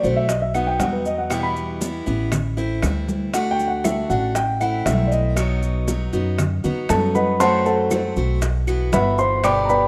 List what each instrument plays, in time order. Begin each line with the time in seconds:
0.03 upright bass B1, steel-string acoustic guitar A3 C4 F#4, grand piano C5, high conga, maracas
0.16 grand piano E5
0.28 grand piano D#5, muted steel-string acoustic guitar stroke, high bongo, high conga, maracas
0.42 grand piano E5
0.54 steel-string acoustic guitar F#3 B3 D#4 F#4, grand piano F#5, high conga, claves, maracas
0.67 grand piano G5
0.79 upright bass E2, steel-string acoustic guitar F#3 B3 D#4 F#4, grand piano F#5, high bongo, low bongo, high conga, maracas
0.93 grand piano B4
1.05 grand piano D#5, maracas
1.18 grand piano F#5
1.30 steel-string acoustic guitar B2 E3 G3 B3 E4, grand piano G5, high bongo, high conga, claves, maracas
1.43 grand piano B5
1.56 high conga, maracas
1.81 steel-string acoustic guitar E3 G3 B3 E4, high bongo, high conga, maracas
2.06 upright bass A1, steel-string acoustic guitar E3 G3 B3 E4, high bongo, high conga, maracas
2.32 muted steel-string acoustic guitar stroke, high bongo, high conga, low conga, claves, maracas
2.57 steel-string acoustic guitar A3 C4 E4, high bongo, high conga, maracas
2.82 upright bass D2, steel-string acoustic guitar E3 A3 C4 E4, high bongo, low bongo, high conga, claves, maracas
3.08 high bongo, high conga, maracas
3.33 steel-string acoustic guitar D3 A3 D4 F#4, grand piano F#5, high bongo, high conga, maracas
3.51 grand piano G5
3.59 high conga, maracas
3.68 grand piano F#5
3.84 steel-string acoustic guitar D3 A3 D4 F#4, grand piano E5, high bongo, high conga, claves, maracas
4.10 upright bass A1, steel-string acoustic guitar A3 D4 F#4, grand piano F#5, high conga, maracas
4.35 grand piano G5, muted steel-string acoustic guitar stroke, high bongo, high conga, maracas
4.61 steel-string acoustic guitar A3 C4 E4, grand piano F#5, high conga, claves, maracas
4.86 upright bass B1, steel-string acoustic guitar E3 A3 C4 E4, grand piano E5, high bongo, low bongo, high conga, maracas
5.07 grand piano D5
5.12 grand piano D#5, maracas
5.36 steel-string acoustic guitar B2 F#3 B3 D#4 F#4, high bongo, high conga, claves, maracas
5.63 high conga, maracas
5.88 steel-string acoustic guitar F#3 B3 D#4 F#4, high bongo, high conga, maracas
6.13 upright bass F#2, steel-string acoustic guitar F#3 B3 D#4 F#4, high bongo, high conga, maracas
6.38 muted steel-string acoustic guitar stroke, high bongo, high conga, low conga, claves, maracas
6.64 upright bass E2, steel-string acoustic guitar F#3 B3 D#4 F#4, high bongo, high conga, low conga, maracas
6.89 upright bass F#2, steel-string acoustic guitar F#3 B3 D#4 F#4, grand piano A4 A5, high bongo, low bongo, high conga, claves, maracas
7.15 grand piano B4 D#5 F#5 B5, high bongo, high conga, maracas
7.40 steel-string acoustic guitar F#3 A3 C4 F#4, grand piano C5 F#5 A5 C6, high bongo, high conga, maracas
7.66 grand piano A4 C5 F#5 A5, high conga, maracas
7.91 steel-string acoustic guitar F#3 A3 C4 F#4, high bongo, high conga, claves, maracas
8.16 upright bass B1, steel-string acoustic guitar A3 C4 F#4, high conga, maracas
8.42 muted steel-string acoustic guitar stroke, high bongo, high conga, maracas
8.67 steel-string acoustic guitar E3 B3 E4 F#4, high conga, claves, maracas
8.92 upright bass G1, steel-string acoustic guitar E3 B3 E4 F#4, grand piano B4 E5 F#5 B5, high bongo, low bongo, high conga, maracas
9.18 grand piano C5 C6, maracas
9.43 steel-string acoustic guitar B2 D3 G3 B3 G4, grand piano D5 G5 B5 D6, high bongo, high conga, claves, maracas
9.65 grand piano A#5
9.69 grand piano B4 D5 G5 B5, high conga, maracas